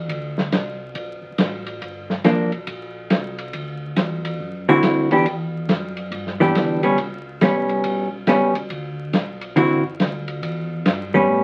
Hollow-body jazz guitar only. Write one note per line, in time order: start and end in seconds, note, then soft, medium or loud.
2.25 2.50 F3 soft
2.25 2.50 A#3 soft
2.25 2.51 D4 soft
4.69 5.09 D3 medium
4.69 5.09 C4 medium
4.69 5.09 E4 medium
4.69 5.09 F#4 medium
5.12 5.25 E3 medium
5.12 5.25 B3 medium
5.12 5.25 D4 medium
5.12 5.25 G4 medium
6.40 6.81 E3 medium
6.40 6.81 B3 medium
6.40 6.81 D4 medium
6.40 6.81 G4 medium
6.83 6.97 G3 medium
6.83 6.97 B3 medium
6.83 6.97 C#4 medium
7.42 8.07 G3 medium
7.42 8.07 B3 medium
7.42 8.08 C#4 medium
8.28 8.53 G3 soft
8.28 8.53 B3 medium
8.28 8.53 C#4 medium
9.56 9.82 D3 medium
9.56 9.82 C4 medium
9.56 9.82 E4 medium
9.56 9.82 F#4 medium
11.14 11.44 G3 medium
11.14 11.44 B3 medium
11.14 11.44 C#4 medium